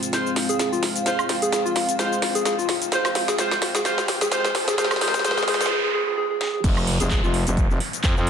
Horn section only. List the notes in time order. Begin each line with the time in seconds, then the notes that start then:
0.13 G#3 F4 C5
1.06 G#3 F4 C5
1.99 G#3 F4 C5
2.92 G#3 F4 C5
3.38 G#3 F4 C5
3.85 G#3 F4 C5
4.31 G#3 F4 C5
4.78 G#3 F4 C5
5.01 G#3 F4 C5
5.24 G#3 F4 C5
5.48 G#3 F4 C5